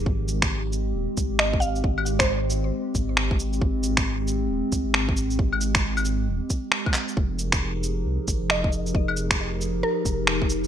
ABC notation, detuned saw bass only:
X:1
M:4/4
L:1/16
Q:"Swing 16ths" 1/4=135
K:Ab
V:1 name="Detuned saw bass" clef=bass
A,,,8 E,,, z C,, A,,,4- A,,, | A,,,8 z2 A,,,6 | A,,,8 E,,, z C,, A,,,4- A,,, | A,,,8 E,,, z6 z |
F,,,8 C,, z A,,, F,,,4- F,,, | F,,,8 z2 F,,,6 |]